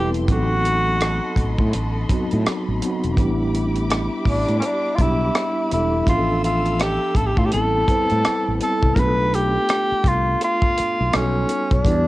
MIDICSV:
0, 0, Header, 1, 7, 480
1, 0, Start_track
1, 0, Tempo, 722892
1, 188, Time_signature, 4, 2, 24, 8
1, 8018, End_track
2, 0, Start_track
2, 0, Title_t, "String section"
2, 0, Program_c, 0, 48
2, 0, Note_on_c, 0, 67, 74
2, 0, Note_on_c, 0, 76, 65
2, 0, Note_on_c, 0, 81, 66
2, 0, Note_on_c, 0, 84, 76
2, 170, Note_off_c, 0, 67, 0
2, 170, Note_off_c, 0, 76, 0
2, 171, Note_off_c, 0, 81, 0
2, 186, Note_on_c, 0, 75, 66
2, 189, Note_on_c, 0, 69, 73
2, 189, Note_on_c, 0, 83, 67
2, 2083, Note_off_c, 0, 84, 0
2, 2088, Note_off_c, 0, 75, 0
2, 2089, Note_off_c, 0, 69, 0
2, 2109, Note_on_c, 0, 67, 70
2, 2112, Note_on_c, 0, 76, 64
2, 2113, Note_on_c, 0, 86, 87
2, 4009, Note_off_c, 0, 67, 0
2, 4011, Note_off_c, 0, 76, 0
2, 4011, Note_off_c, 0, 86, 0
2, 4024, Note_on_c, 0, 88, 80
2, 4027, Note_on_c, 0, 69, 77
2, 4028, Note_on_c, 0, 65, 61
2, 4962, Note_off_c, 0, 83, 0
2, 4976, Note_off_c, 0, 88, 0
2, 4978, Note_off_c, 0, 65, 0
2, 4991, Note_on_c, 0, 81, 77
2, 4991, Note_on_c, 0, 83, 58
2, 4992, Note_on_c, 0, 79, 59
2, 5928, Note_off_c, 0, 69, 0
2, 5940, Note_off_c, 0, 81, 0
2, 5940, Note_off_c, 0, 83, 0
2, 5941, Note_off_c, 0, 79, 0
2, 8018, End_track
3, 0, Start_track
3, 0, Title_t, "Tenor saxophone"
3, 0, Program_c, 1, 66
3, 207, Note_on_c, 1, 66, 92
3, 1131, Note_off_c, 1, 66, 0
3, 2850, Note_on_c, 1, 62, 73
3, 3028, Note_off_c, 1, 62, 0
3, 3050, Note_on_c, 1, 61, 59
3, 3090, Note_on_c, 1, 62, 84
3, 3100, Note_off_c, 1, 61, 0
3, 3290, Note_on_c, 1, 65, 58
3, 3300, Note_off_c, 1, 62, 0
3, 3332, Note_on_c, 1, 64, 83
3, 3342, Note_off_c, 1, 65, 0
3, 3800, Note_off_c, 1, 64, 0
3, 3808, Note_on_c, 1, 64, 81
3, 4022, Note_off_c, 1, 64, 0
3, 4042, Note_on_c, 1, 65, 85
3, 4259, Note_off_c, 1, 65, 0
3, 4279, Note_on_c, 1, 65, 80
3, 4526, Note_on_c, 1, 67, 92
3, 4536, Note_off_c, 1, 65, 0
3, 4758, Note_on_c, 1, 69, 67
3, 4768, Note_off_c, 1, 67, 0
3, 4823, Note_on_c, 1, 67, 72
3, 4833, Note_off_c, 1, 69, 0
3, 4899, Note_on_c, 1, 65, 66
3, 4909, Note_off_c, 1, 67, 0
3, 4948, Note_on_c, 1, 67, 74
3, 4958, Note_off_c, 1, 65, 0
3, 4993, Note_off_c, 1, 67, 0
3, 5000, Note_on_c, 1, 69, 101
3, 5687, Note_off_c, 1, 69, 0
3, 5730, Note_on_c, 1, 69, 85
3, 5937, Note_on_c, 1, 70, 67
3, 5947, Note_off_c, 1, 69, 0
3, 5973, Note_on_c, 1, 71, 91
3, 5983, Note_off_c, 1, 70, 0
3, 6205, Note_on_c, 1, 67, 100
3, 6215, Note_off_c, 1, 71, 0
3, 6690, Note_on_c, 1, 65, 83
3, 6700, Note_off_c, 1, 67, 0
3, 6919, Note_off_c, 1, 65, 0
3, 6932, Note_on_c, 1, 65, 100
3, 7405, Note_on_c, 1, 61, 80
3, 7414, Note_off_c, 1, 65, 0
3, 7785, Note_on_c, 1, 62, 78
3, 7794, Note_off_c, 1, 61, 0
3, 8018, Note_off_c, 1, 62, 0
3, 8018, End_track
4, 0, Start_track
4, 0, Title_t, "Tine electric piano"
4, 0, Program_c, 2, 4
4, 0, Control_c, 2, 64, 127
4, 0, Note_on_c, 2, 55, 59
4, 0, Note_on_c, 2, 59, 53
4, 0, Note_on_c, 2, 60, 53
4, 0, Note_on_c, 2, 64, 55
4, 0, Note_on_c, 2, 69, 63
4, 0, Note_on_c, 2, 71, 65
4, 141, Note_off_c, 2, 55, 0
4, 144, Note_off_c, 2, 59, 0
4, 147, Note_off_c, 2, 60, 0
4, 151, Note_off_c, 2, 64, 0
4, 153, Note_off_c, 2, 71, 0
4, 191, Note_on_c, 2, 54, 61
4, 195, Note_on_c, 2, 59, 55
4, 197, Control_c, 2, 64, 0
4, 201, Note_off_c, 2, 69, 0
4, 204, Note_on_c, 2, 60, 62
4, 209, Note_on_c, 2, 63, 62
4, 216, Note_on_c, 2, 69, 72
4, 320, Control_c, 2, 64, 127
4, 930, Note_off_c, 2, 54, 0
4, 932, Note_off_c, 2, 59, 0
4, 937, Note_off_c, 2, 60, 0
4, 939, Note_off_c, 2, 63, 0
4, 943, Note_off_c, 2, 69, 0
4, 1390, Note_on_c, 2, 54, 75
4, 1395, Note_on_c, 2, 59, 60
4, 1401, Note_on_c, 2, 60, 62
4, 1408, Note_on_c, 2, 63, 62
4, 1413, Note_on_c, 2, 66, 79
4, 1778, Note_off_c, 2, 54, 0
4, 1781, Note_off_c, 2, 59, 0
4, 1784, Note_off_c, 2, 60, 0
4, 1787, Note_off_c, 2, 63, 0
4, 1790, Note_off_c, 2, 66, 0
4, 1870, Note_on_c, 2, 54, 68
4, 1878, Note_on_c, 2, 59, 64
4, 1882, Note_on_c, 2, 60, 68
4, 1889, Note_on_c, 2, 63, 62
4, 1893, Note_on_c, 2, 66, 78
4, 2064, Note_off_c, 2, 54, 0
4, 2067, Note_off_c, 2, 59, 0
4, 2070, Note_off_c, 2, 60, 0
4, 2073, Note_off_c, 2, 63, 0
4, 2075, Note_off_c, 2, 66, 0
4, 2113, Note_on_c, 2, 55, 80
4, 2117, Control_c, 2, 64, 0
4, 2117, Note_on_c, 2, 59, 76
4, 2123, Note_on_c, 2, 62, 76
4, 2128, Note_on_c, 2, 64, 72
4, 2136, Note_on_c, 2, 67, 85
4, 2241, Control_c, 2, 64, 127
4, 2851, Note_off_c, 2, 55, 0
4, 2853, Note_off_c, 2, 59, 0
4, 2856, Note_off_c, 2, 62, 0
4, 2859, Note_off_c, 2, 64, 0
4, 2863, Note_off_c, 2, 67, 0
4, 3314, Note_on_c, 2, 55, 59
4, 3320, Note_on_c, 2, 59, 58
4, 3328, Note_on_c, 2, 62, 53
4, 3332, Note_on_c, 2, 64, 52
4, 3339, Note_on_c, 2, 67, 64
4, 3700, Note_off_c, 2, 55, 0
4, 3703, Note_off_c, 2, 59, 0
4, 3707, Note_off_c, 2, 62, 0
4, 3709, Note_off_c, 2, 64, 0
4, 3712, Note_off_c, 2, 67, 0
4, 3792, Note_on_c, 2, 55, 62
4, 3798, Note_on_c, 2, 59, 53
4, 3804, Note_on_c, 2, 62, 54
4, 3808, Note_on_c, 2, 64, 59
4, 3813, Note_on_c, 2, 69, 67
4, 3984, Note_off_c, 2, 55, 0
4, 3987, Note_off_c, 2, 59, 0
4, 3991, Note_off_c, 2, 62, 0
4, 3992, Note_off_c, 2, 64, 0
4, 3995, Note_off_c, 2, 69, 0
4, 4033, Note_on_c, 2, 53, 63
4, 4037, Control_c, 2, 64, 0
4, 4037, Note_on_c, 2, 59, 58
4, 4046, Note_on_c, 2, 62, 64
4, 4049, Note_on_c, 2, 76, 61
4, 4057, Note_on_c, 2, 68, 53
4, 4093, Note_off_c, 2, 68, 0
4, 4098, Note_on_c, 2, 69, 72
4, 4164, Control_c, 2, 64, 127
4, 4771, Note_off_c, 2, 53, 0
4, 4773, Note_off_c, 2, 59, 0
4, 4778, Note_off_c, 2, 62, 0
4, 4779, Note_off_c, 2, 76, 0
4, 4804, Note_off_c, 2, 69, 0
4, 4994, Note_on_c, 2, 55, 72
4, 4998, Control_c, 2, 64, 0
4, 4998, Note_on_c, 2, 59, 57
4, 5003, Note_on_c, 2, 60, 62
4, 5012, Note_on_c, 2, 64, 61
4, 5014, Note_on_c, 2, 69, 69
4, 5133, Control_c, 2, 64, 127
4, 5192, Note_off_c, 2, 55, 0
4, 5194, Note_off_c, 2, 59, 0
4, 5196, Note_off_c, 2, 60, 0
4, 5201, Note_off_c, 2, 64, 0
4, 5202, Note_off_c, 2, 69, 0
4, 5233, Note_on_c, 2, 55, 59
4, 5237, Note_on_c, 2, 71, 54
4, 5243, Note_on_c, 2, 60, 51
4, 5249, Note_on_c, 2, 64, 54
4, 5256, Note_on_c, 2, 72, 65
4, 5619, Note_off_c, 2, 55, 0
4, 5621, Note_off_c, 2, 71, 0
4, 5624, Note_off_c, 2, 60, 0
4, 5628, Note_off_c, 2, 64, 0
4, 5631, Note_off_c, 2, 72, 0
4, 5710, Note_on_c, 2, 55, 69
4, 5715, Note_on_c, 2, 59, 64
4, 5721, Note_on_c, 2, 60, 67
4, 5726, Note_on_c, 2, 64, 63
4, 5734, Note_on_c, 2, 69, 84
4, 5903, Note_off_c, 2, 55, 0
4, 5906, Note_off_c, 2, 59, 0
4, 5909, Note_off_c, 2, 60, 0
4, 5912, Note_off_c, 2, 64, 0
4, 5915, Note_off_c, 2, 69, 0
4, 5950, Note_on_c, 2, 57, 66
4, 5956, Control_c, 2, 64, 0
4, 5957, Note_on_c, 2, 59, 57
4, 5962, Note_on_c, 2, 62, 64
4, 5966, Note_on_c, 2, 65, 59
4, 5973, Note_on_c, 2, 68, 62
4, 6012, Note_off_c, 2, 68, 0
4, 6017, Note_on_c, 2, 69, 71
4, 6093, Control_c, 2, 64, 127
4, 6690, Note_off_c, 2, 57, 0
4, 6693, Note_off_c, 2, 59, 0
4, 6696, Note_off_c, 2, 62, 0
4, 6698, Note_off_c, 2, 65, 0
4, 6723, Note_off_c, 2, 69, 0
4, 7384, Note_on_c, 2, 55, 65
4, 7391, Note_on_c, 2, 59, 59
4, 7395, Note_on_c, 2, 63, 62
4, 7397, Control_c, 2, 64, 0
4, 7401, Note_on_c, 2, 66, 60
4, 7407, Note_on_c, 2, 69, 72
4, 7530, Control_c, 2, 64, 127
4, 7775, Note_off_c, 2, 55, 0
4, 7778, Note_off_c, 2, 59, 0
4, 7780, Note_off_c, 2, 63, 0
4, 7784, Note_off_c, 2, 66, 0
4, 7787, Note_off_c, 2, 69, 0
4, 7864, Note_on_c, 2, 55, 69
4, 7872, Note_on_c, 2, 59, 64
4, 7876, Note_on_c, 2, 62, 60
4, 7878, Control_c, 2, 64, 0
4, 7882, Note_on_c, 2, 64, 61
4, 7889, Note_on_c, 2, 67, 73
4, 8007, Control_c, 2, 64, 127
4, 8018, Note_off_c, 2, 55, 0
4, 8018, Note_off_c, 2, 59, 0
4, 8018, Note_off_c, 2, 62, 0
4, 8018, Note_off_c, 2, 64, 0
4, 8018, Note_off_c, 2, 67, 0
4, 8018, End_track
5, 0, Start_track
5, 0, Title_t, "Fretless electric bass"
5, 0, Program_c, 3, 35
5, 0, Note_on_c, 3, 28, 83
5, 196, Note_off_c, 3, 28, 0
5, 196, Note_on_c, 3, 33, 86
5, 787, Note_off_c, 3, 33, 0
5, 913, Note_on_c, 3, 33, 73
5, 1028, Note_off_c, 3, 33, 0
5, 1062, Note_on_c, 3, 45, 89
5, 1138, Note_off_c, 3, 45, 0
5, 1162, Note_on_c, 3, 33, 94
5, 1354, Note_off_c, 3, 33, 0
5, 1546, Note_on_c, 3, 45, 81
5, 1620, Note_off_c, 3, 45, 0
5, 1782, Note_on_c, 3, 33, 80
5, 1858, Note_off_c, 3, 33, 0
5, 2021, Note_on_c, 3, 28, 80
5, 2115, Note_off_c, 3, 28, 0
5, 2115, Note_on_c, 3, 33, 105
5, 2707, Note_off_c, 3, 33, 0
5, 2835, Note_on_c, 3, 33, 75
5, 2949, Note_off_c, 3, 33, 0
5, 2978, Note_on_c, 3, 45, 87
5, 3056, Note_off_c, 3, 45, 0
5, 3320, Note_on_c, 3, 35, 83
5, 3513, Note_off_c, 3, 35, 0
5, 3801, Note_on_c, 3, 28, 78
5, 3994, Note_off_c, 3, 28, 0
5, 4037, Note_on_c, 3, 33, 92
5, 4628, Note_off_c, 3, 33, 0
5, 4756, Note_on_c, 3, 33, 75
5, 4870, Note_off_c, 3, 33, 0
5, 4902, Note_on_c, 3, 45, 80
5, 4978, Note_off_c, 3, 45, 0
5, 5009, Note_on_c, 3, 33, 89
5, 5198, Note_off_c, 3, 33, 0
5, 5389, Note_on_c, 3, 45, 81
5, 5462, Note_off_c, 3, 45, 0
5, 5632, Note_on_c, 3, 33, 74
5, 5704, Note_off_c, 3, 33, 0
5, 5869, Note_on_c, 3, 36, 78
5, 5942, Note_off_c, 3, 36, 0
5, 5960, Note_on_c, 3, 35, 101
5, 6351, Note_off_c, 3, 35, 0
5, 6672, Note_on_c, 3, 36, 77
5, 6869, Note_off_c, 3, 36, 0
5, 7307, Note_on_c, 3, 35, 81
5, 7381, Note_off_c, 3, 35, 0
5, 7401, Note_on_c, 3, 35, 89
5, 7594, Note_off_c, 3, 35, 0
5, 7785, Note_on_c, 3, 35, 79
5, 7860, Note_off_c, 3, 35, 0
5, 7872, Note_on_c, 3, 40, 101
5, 8018, Note_off_c, 3, 40, 0
5, 8018, End_track
6, 0, Start_track
6, 0, Title_t, "Muted fretless electric bass strokes"
6, 1641, Note_on_c, 9, 29, 39
6, 1707, Note_off_c, 9, 29, 0
6, 5490, Note_on_c, 9, 29, 38
6, 5556, Note_off_c, 9, 29, 0
6, 6586, Note_on_c, 9, 29, 38
6, 6653, Note_off_c, 9, 29, 0
6, 7167, Note_on_c, 9, 29, 46
6, 7234, Note_off_c, 9, 29, 0
6, 8018, End_track
7, 0, Start_track
7, 0, Title_t, "Drums"
7, 94, Note_on_c, 9, 42, 28
7, 161, Note_off_c, 9, 42, 0
7, 187, Note_on_c, 9, 36, 97
7, 191, Note_on_c, 9, 42, 71
7, 254, Note_off_c, 9, 36, 0
7, 257, Note_off_c, 9, 42, 0
7, 433, Note_on_c, 9, 42, 49
7, 499, Note_off_c, 9, 42, 0
7, 668, Note_on_c, 9, 42, 70
7, 676, Note_on_c, 9, 37, 91
7, 735, Note_off_c, 9, 42, 0
7, 742, Note_off_c, 9, 37, 0
7, 904, Note_on_c, 9, 36, 77
7, 911, Note_on_c, 9, 42, 57
7, 970, Note_off_c, 9, 36, 0
7, 978, Note_off_c, 9, 42, 0
7, 1052, Note_on_c, 9, 36, 71
7, 1118, Note_off_c, 9, 36, 0
7, 1150, Note_on_c, 9, 42, 62
7, 1216, Note_off_c, 9, 42, 0
7, 1390, Note_on_c, 9, 36, 80
7, 1392, Note_on_c, 9, 42, 66
7, 1456, Note_off_c, 9, 36, 0
7, 1458, Note_off_c, 9, 42, 0
7, 1534, Note_on_c, 9, 42, 31
7, 1600, Note_off_c, 9, 42, 0
7, 1636, Note_on_c, 9, 42, 64
7, 1637, Note_on_c, 9, 37, 95
7, 1702, Note_off_c, 9, 42, 0
7, 1704, Note_off_c, 9, 37, 0
7, 1874, Note_on_c, 9, 42, 68
7, 1940, Note_off_c, 9, 42, 0
7, 2017, Note_on_c, 9, 42, 28
7, 2083, Note_off_c, 9, 42, 0
7, 2107, Note_on_c, 9, 36, 101
7, 2113, Note_on_c, 9, 42, 69
7, 2173, Note_off_c, 9, 36, 0
7, 2180, Note_off_c, 9, 42, 0
7, 2356, Note_on_c, 9, 42, 48
7, 2422, Note_off_c, 9, 42, 0
7, 2494, Note_on_c, 9, 42, 29
7, 2561, Note_off_c, 9, 42, 0
7, 2592, Note_on_c, 9, 42, 68
7, 2600, Note_on_c, 9, 37, 102
7, 2659, Note_off_c, 9, 42, 0
7, 2666, Note_off_c, 9, 37, 0
7, 2825, Note_on_c, 9, 36, 76
7, 2835, Note_on_c, 9, 46, 41
7, 2891, Note_off_c, 9, 36, 0
7, 2902, Note_off_c, 9, 46, 0
7, 2977, Note_on_c, 9, 42, 29
7, 3044, Note_off_c, 9, 42, 0
7, 3068, Note_on_c, 9, 42, 68
7, 3135, Note_off_c, 9, 42, 0
7, 3311, Note_on_c, 9, 36, 79
7, 3314, Note_on_c, 9, 42, 63
7, 3377, Note_off_c, 9, 36, 0
7, 3380, Note_off_c, 9, 42, 0
7, 3553, Note_on_c, 9, 42, 68
7, 3555, Note_on_c, 9, 37, 98
7, 3619, Note_off_c, 9, 42, 0
7, 3621, Note_off_c, 9, 37, 0
7, 3795, Note_on_c, 9, 42, 62
7, 3861, Note_off_c, 9, 42, 0
7, 4029, Note_on_c, 9, 36, 97
7, 4035, Note_on_c, 9, 42, 71
7, 4095, Note_off_c, 9, 36, 0
7, 4101, Note_off_c, 9, 42, 0
7, 4278, Note_on_c, 9, 42, 50
7, 4344, Note_off_c, 9, 42, 0
7, 4420, Note_on_c, 9, 42, 30
7, 4486, Note_off_c, 9, 42, 0
7, 4513, Note_on_c, 9, 42, 70
7, 4521, Note_on_c, 9, 37, 90
7, 4579, Note_off_c, 9, 42, 0
7, 4587, Note_off_c, 9, 37, 0
7, 4747, Note_on_c, 9, 36, 82
7, 4755, Note_on_c, 9, 42, 55
7, 4813, Note_off_c, 9, 36, 0
7, 4821, Note_off_c, 9, 42, 0
7, 4894, Note_on_c, 9, 36, 76
7, 4961, Note_off_c, 9, 36, 0
7, 4992, Note_on_c, 9, 42, 68
7, 5059, Note_off_c, 9, 42, 0
7, 5233, Note_on_c, 9, 36, 84
7, 5236, Note_on_c, 9, 42, 61
7, 5299, Note_off_c, 9, 36, 0
7, 5303, Note_off_c, 9, 42, 0
7, 5377, Note_on_c, 9, 42, 29
7, 5443, Note_off_c, 9, 42, 0
7, 5476, Note_on_c, 9, 42, 70
7, 5478, Note_on_c, 9, 37, 94
7, 5542, Note_off_c, 9, 42, 0
7, 5544, Note_off_c, 9, 37, 0
7, 5714, Note_on_c, 9, 42, 61
7, 5781, Note_off_c, 9, 42, 0
7, 5861, Note_on_c, 9, 36, 86
7, 5927, Note_off_c, 9, 36, 0
7, 5950, Note_on_c, 9, 36, 101
7, 5957, Note_on_c, 9, 42, 74
7, 6017, Note_off_c, 9, 36, 0
7, 6023, Note_off_c, 9, 42, 0
7, 6201, Note_on_c, 9, 42, 50
7, 6267, Note_off_c, 9, 42, 0
7, 6433, Note_on_c, 9, 42, 71
7, 6441, Note_on_c, 9, 37, 90
7, 6499, Note_off_c, 9, 42, 0
7, 6507, Note_off_c, 9, 37, 0
7, 6667, Note_on_c, 9, 36, 87
7, 6679, Note_on_c, 9, 42, 58
7, 6733, Note_off_c, 9, 36, 0
7, 6745, Note_off_c, 9, 42, 0
7, 6912, Note_on_c, 9, 42, 66
7, 6979, Note_off_c, 9, 42, 0
7, 7050, Note_on_c, 9, 36, 86
7, 7117, Note_off_c, 9, 36, 0
7, 7155, Note_on_c, 9, 42, 71
7, 7221, Note_off_c, 9, 42, 0
7, 7392, Note_on_c, 9, 42, 67
7, 7394, Note_on_c, 9, 37, 104
7, 7458, Note_off_c, 9, 42, 0
7, 7460, Note_off_c, 9, 37, 0
7, 7629, Note_on_c, 9, 42, 64
7, 7695, Note_off_c, 9, 42, 0
7, 7776, Note_on_c, 9, 36, 94
7, 7776, Note_on_c, 9, 42, 31
7, 7842, Note_off_c, 9, 42, 0
7, 7843, Note_off_c, 9, 36, 0
7, 7866, Note_on_c, 9, 36, 108
7, 7874, Note_on_c, 9, 42, 76
7, 7932, Note_off_c, 9, 36, 0
7, 7941, Note_off_c, 9, 42, 0
7, 8018, End_track
0, 0, End_of_file